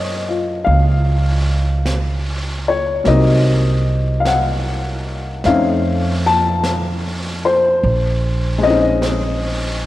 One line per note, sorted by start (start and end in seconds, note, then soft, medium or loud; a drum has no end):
0.00 0.63 F#2 medium
0.00 3.03 G#3 soft
0.00 3.04 A#3 soft
0.00 3.07 C#4 soft
0.00 0.27 F4 soft
0.00 3.08 C5 medium
0.00 2.68 C#5 medium
0.00 0.69 D#5 medium
0.29 3.07 F4 soft
0.64 3.02 C#2 medium
0.64 1.81 F5 medium
0.64 brush sweep soft
1.85 brush sweep soft
1.85 snare soft
1.85 hi-hat pedal soft
2.68 3.08 C#5 medium
3.04 5.41 C2 medium
3.04 5.44 F#3 soft
3.04 5.45 A#3 soft
3.04 5.44 C4 soft
3.04 4.25 D#5 medium
3.04 brush sweep soft
3.04 snare soft
3.09 5.45 D#4 soft
4.20 4.25 F5 medium
4.25 5.49 F#5 medium
4.25 brush sweep soft
4.25 snare soft
4.25 hi-hat pedal soft
5.44 7.79 F2 medium
5.44 7.83 A3 soft
5.44 7.83 C4 soft
5.44 7.84 C#4 soft
5.44 7.84 D#4 soft
5.44 6.28 F5 medium
5.44 brush sweep soft
5.44 snare soft
6.26 7.48 A5 medium
6.63 brush sweep soft
6.63 snare soft
6.63 hi-hat pedal soft
7.45 8.59 C5 medium
7.83 9.86 A#1 medium
7.83 brush sweep soft
8.58 9.86 G#3 soft
8.58 9.86 C4 soft
8.63 9.86 C#4 soft
8.63 9.86 D#5 medium
8.69 9.86 D#4 soft
9.02 brush sweep soft
9.02 snare soft
9.02 hi-hat pedal soft